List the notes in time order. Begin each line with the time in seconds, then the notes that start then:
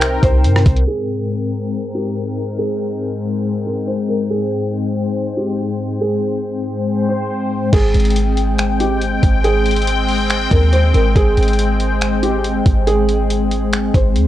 Already playing: C2 C3 C4 D#4 A#4 G5
0.01 finger snap, closed hi-hat
0.23 C2 C5, kick, closed hi-hat
0.44 G2, closed hi-hat
0.56 cross-stick
0.66 C2, kick, closed hi-hat
0.77 closed hi-hat
0.87 G#2 G#3 C4 G#4 A#4 G5
1.95 G4
2.59 G#4
3.66 A#4
3.87 C5
4.08 A#4
4.30 G#4 C5
5.37 G4
6.01 G#4
7.09 C5
7.73 G#1 G#3 C4 G#4 G5, kick, closed hi-hat, crash
7.94 G#1, closed hi-hat
8.00 closed hi-hat
8.05 closed hi-hat
8.10 closed hi-hat
8.16 closed hi-hat
8.37 closed hi-hat
8.58 finger snap, closed hi-hat
8.80 G4, closed hi-hat
9.01 closed hi-hat
9.23 G#1, kick, closed hi-hat
9.44 G#4, closed hi-hat
9.66 closed hi-hat
9.71 closed hi-hat
9.76 closed hi-hat
9.82 closed hi-hat
9.87 closed hi-hat
10.08 open hi-hat
10.30 finger snap, closed hi-hat
10.51 D#2 A#4, kick, closed hi-hat
10.73 C5, closed hi-hat
10.94 G#1 A#4, closed hi-hat
11.16 G#1 G#4, kick, closed hi-hat
11.37 G#1, closed hi-hat
11.43 closed hi-hat
11.48 closed hi-hat
11.53 closed hi-hat
11.59 closed hi-hat
11.80 closed hi-hat
12.01 finger snap, closed hi-hat
12.23 G4, closed hi-hat
12.44 closed hi-hat
12.66 G#1, kick, closed hi-hat
12.87 G#4, closed hi-hat
13.09 closed hi-hat
13.30 closed hi-hat
13.51 closed hi-hat
13.73 finger snap, closed hi-hat
13.94 G#1 C5, kick, closed hi-hat
14.16 D#2, closed hi-hat